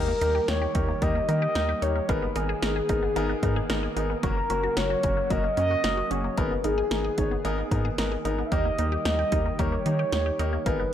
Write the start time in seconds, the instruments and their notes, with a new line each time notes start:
Already playing: analog synth bass D#2, analog synth pad D#3 G3 A#3 G4, soft synth lead A#4
0.08 synth arpeggio sound A#3
0.21 analog synth bass D#2, grand piano A#3 D#4 G4 A#4, synth arpeggio sound D#4, closed hi-hat
0.35 synth arpeggio sound G4
0.48 analog synth bass D#2, grand piano A#3 D#4 G4 C#5, soft synth lead C#5, synth arpeggio sound G5, snare, closed hi-hat
0.62 synth arpeggio sound G4
0.75 analog synth bass D#2, grand piano A#3 D#4 G4 A#4, synth arpeggio sound D#4, kick, closed hi-hat
0.88 synth arpeggio sound A#3
1.02 analog synth bass D#2, synth arpeggio sound G3, grand piano A#3 D#4 G4 A#4, soft synth lead D#5, kick, closed hi-hat
1.15 synth arpeggio sound A#3
1.29 analog synth bass D#3, grand piano A#3 D#4 G4 A#4, synth arpeggio sound D#4, soft synth lead D#5, closed hi-hat
1.42 synth arpeggio sound G4
1.55 analog synth bass D#2, grand piano A#3 D#4 G4 A#4, synth arpeggio sound G5, snare, closed hi-hat
1.69 synth arpeggio sound G4
1.82 analog synth bass D#2, grand piano A#3 D#4 G4 A#4, synth arpeggio sound D#4, soft synth lead C#5, closed hi-hat
1.96 synth arpeggio sound A#3
2.09 analog synth bass G#1, analog synth pad D#3 B3 G#4, synth arpeggio sound A#3, grand piano B3 D#4 G#4 A#4, soft synth lead B4, kick, closed hi-hat
2.22 synth arpeggio sound B3
2.36 analog synth bass G#1, grand piano B3 D#4 G#4 A#4, synth arpeggio sound D#4, soft synth lead G#4, closed hi-hat
2.49 synth arpeggio sound G#4
2.63 analog synth bass G#1, grand piano B3 D#4 G#4 A#4, synth arpeggio sound A#4, snare, closed hi-hat
2.76 synth arpeggio sound G#4
2.89 analog synth bass G#1, grand piano B3 D#4 G#4 A#4, synth arpeggio sound D#4, kick, closed hi-hat
3.03 synth arpeggio sound B3
3.16 analog synth bass G#1, synth arpeggio sound A#3, grand piano B3 D#4 G#4 A#4, closed hi-hat
3.29 synth arpeggio sound B3
3.43 analog synth bass G#2, grand piano B3 D#4 G#4 A#4, synth arpeggio sound D#4, kick, closed hi-hat
3.56 synth arpeggio sound G#4
3.70 analog synth bass G#1, grand piano B3 D#4 G#4 A#4, synth arpeggio sound A#4, snare, closed hi-hat
3.83 synth arpeggio sound G#4
3.96 analog synth bass G#1, grand piano B3 D#4 G#4 A#4, synth arpeggio sound D#4, closed hi-hat
4.10 synth arpeggio sound B3
4.23 analog synth bass F#1, analog synth pad C#3 F#3 F#4, synth arpeggio sound F#3, grand piano A#3 C#4 F#4 A#4, soft synth lead A#4, kick, closed hi-hat
4.37 synth arpeggio sound A#3
4.50 analog synth bass F#1, grand piano A#3 C#4 F#4 A#4, synth arpeggio sound C#4, closed hi-hat
4.63 synth arpeggio sound F#4
4.77 analog synth bass F#1, grand piano A#3 C#4 F#4 A#4, soft synth lead C#5, synth arpeggio sound F#5, snare, closed hi-hat
4.90 synth arpeggio sound F#4
5.03 analog synth bass F#1, grand piano A#3 C#4 F#4 A#4, synth arpeggio sound C#4, kick, closed hi-hat
5.17 synth arpeggio sound A#3
5.30 analog synth bass F#1, synth arpeggio sound F#3, grand piano A#3 C#4 F#4 A#4, soft synth lead D#5, kick, closed hi-hat
5.44 synth arpeggio sound A#3
5.57 analog synth bass F#2, grand piano A#3 C#4 F#4 A#4, synth arpeggio sound C#4, soft synth lead D#5, closed hi-hat
5.71 synth arpeggio sound F#4
5.84 analog synth bass F#1, grand piano A#3 C#4 F#4 A#4, synth arpeggio sound F#5, snare, closed hi-hat
5.97 synth arpeggio sound F#4
6.11 analog synth bass F#1, grand piano A#3 C#4 F#4 G#4, synth arpeggio sound C#4, soft synth lead C#5, closed hi-hat
6.24 synth arpeggio sound A#3
6.37 analog synth bass G#1, analog synth pad D#3 B3 G#4, synth arpeggio sound A#3, grand piano B3 D#4 G#4 A#4, soft synth lead B4, kick, closed hi-hat
6.51 synth arpeggio sound B3
6.64 analog synth bass G#1, grand piano B3 D#4 G#4 A#4, synth arpeggio sound D#4, soft synth lead G#4, closed hi-hat
6.78 synth arpeggio sound G#4
6.91 analog synth bass G#1, grand piano B3 D#4 G#4 A#4, synth arpeggio sound A#4, snare, closed hi-hat
7.04 synth arpeggio sound G#4
7.18 analog synth bass G#1, grand piano B3 D#4 G#4 C#5, synth arpeggio sound D#4, kick, closed hi-hat
7.31 synth arpeggio sound B3
7.45 analog synth bass G#1, synth arpeggio sound A#3, grand piano B3 D#4 G#4 A#4, closed hi-hat
7.58 synth arpeggio sound B3
7.71 analog synth bass G#2, grand piano B3 D#4 G#4 A#4, synth arpeggio sound D#4, kick, closed hi-hat
7.85 synth arpeggio sound G#4
7.98 analog synth bass G#1, grand piano B3 D#4 G#4 A#4, synth arpeggio sound A#4, snare, closed hi-hat
8.12 synth arpeggio sound G#4
8.25 analog synth bass G#1, grand piano B3 D#4 G#4 A#4, synth arpeggio sound D#4, closed hi-hat
8.38 synth arpeggio sound B3
8.45 soft synth lead E5
8.52 analog synth bass D#2, analog synth pad G3 G4, synth arpeggio sound G3, grand piano A#3 D#4 G4 A#4, soft synth lead D#5, kick, closed hi-hat
8.65 synth arpeggio sound A#3
8.79 analog synth bass D#2, grand piano A#3 D#4 G4 A#4, synth arpeggio sound D#4, closed hi-hat
8.92 synth arpeggio sound G4
9.05 analog synth bass D#2, grand piano A#3 D#4 G4 A#4, soft synth lead D#5, synth arpeggio sound G5, snare, closed hi-hat
9.19 synth arpeggio sound G4
9.32 analog synth bass D#2, grand piano A#3 D#4 G4 A#4, synth arpeggio sound D#4, kick, closed hi-hat
9.46 synth arpeggio sound A#3
9.59 analog synth bass D#2, synth arpeggio sound G3, grand piano A#3 D#4 G4 A#4, soft synth lead C#5, kick, closed hi-hat
9.72 synth arpeggio sound A#3
9.86 analog synth bass D#3, grand piano A#3 D#4 G4 A#4, synth arpeggio sound D#4, closed hi-hat
9.99 synth arpeggio sound G4
10.12 analog synth bass D#2, grand piano A#3 D#4 G4 C#5, synth arpeggio sound G5, snare, closed hi-hat
10.26 synth arpeggio sound G4
10.39 analog synth bass D#2, grand piano A#3 D#4 G4 A#4, synth arpeggio sound D#4, closed hi-hat
10.53 synth arpeggio sound A#3
10.66 analog synth bass G#1, synth arpeggio sound A#3, grand piano B3 D#4 G#4 A#4, analog synth pad B3 G#4, soft synth lead B4, kick, closed hi-hat
10.80 synth arpeggio sound B3